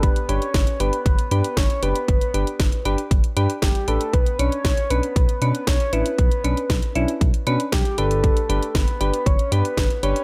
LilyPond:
<<
  \new Staff \with { instrumentName = "Soft synth lead" } { \time 4/4 \key g \lydian \tempo 4 = 117 b'8 cis''4 b'4 b'8 cis''8 b'8~ | b'4. r4. g'8 a'8 | b'8 cis''4 b'4 b'8 cis''8 b'8~ | b'4. r4. g'8 a'8~ |
a'4 b'4 cis''8 b'4 cis''8 | }
  \new Staff \with { instrumentName = "Synth keys" } { \time 4/4 \key g \lydian <d' g' b'>8 <d' g' b'>16 r8. <d' g' b'>16 r8. <d' g' b'>16 r8. <d' g' b'>16 r16 | r8 <d' g' b'>16 r8. <d' g' b'>16 r8. <d' g' b'>16 r8. <d' g' b'>16 r16 | r8 <cis' d' b'>16 r8. <cis' d' b'>16 r8. <cis' d' b'>16 r8. <cis' d' e'>16 r16 | r8 <cis' d' b'>16 r8. <cis' d' e'>16 r8. <cis' d' b'>16 r8. <d' g' b'>8~ |
<d' g' b'>8 <d' g' b'>16 r8. <d' g' b'>16 r8. <d' g' b'>16 r8. <d' g' b'>16 r16 | }
  \new Staff \with { instrumentName = "Analog synth bass" } { \clef bass \time 4/4 \key g \lydian r8 g,,16 r16 g,,16 r16 g,,16 r16 g,,16 r16 g,16 r16 g,,16 r16 fis,,16 r16 | g,,16 r16 g,,16 r16 g,,16 r16 g,,16 r16 g,,16 r16 g,16 r16 g,,16 r16 a,,16 r16 | b,,16 r16 b,,16 r16 b,,16 r16 b,,16 r16 b,,16 r16 b,16 r16 b,,16 r16 a,,16 r16 | b,,16 r16 b,,16 r16 b,,16 r16 b,,16 r16 b,,16 r16 b,16 r16 b,,16 r16 g,,8~ |
g,,16 r16 g,,16 r16 g,,16 r16 g,,16 r16 g,,16 r16 g,16 r16 g,,16 r16 g,,16 r16 | }
  \new DrumStaff \with { instrumentName = "Drums" } \drummode { \time 4/4 <hh bd>16 hh16 hh16 hh16 <hh bd sn>16 hh16 hh16 hh16 <hh bd>16 hh16 hh16 hh16 <hh bd sn>16 hh16 hh16 hh16 | <hh bd>16 hh16 hh16 hh16 <hh bd sn>16 hh16 hh16 hh16 <hh bd>16 hh16 hh16 hh16 <hh bd sn>16 hh16 hh16 hh16 | <hh bd>16 hh16 hh16 hh16 <hh bd sn>16 hh16 hh16 hh16 <hh bd>16 hh16 hh16 hh16 <hh bd sn>16 hh16 hh16 hh16 | <hh bd>16 hh16 hh16 hh16 <hh bd sn>16 hh16 hh16 hh16 <hh bd>16 hh16 hh16 hh16 <hh bd sn>16 hh16 hh16 hh16 |
<hh bd>16 hh16 hh16 hh16 <hh bd sn>16 hh16 hh16 hh16 <hh bd>16 hh16 hh16 hh16 <hh bd sn>16 hh16 hh16 hh16 | }
>>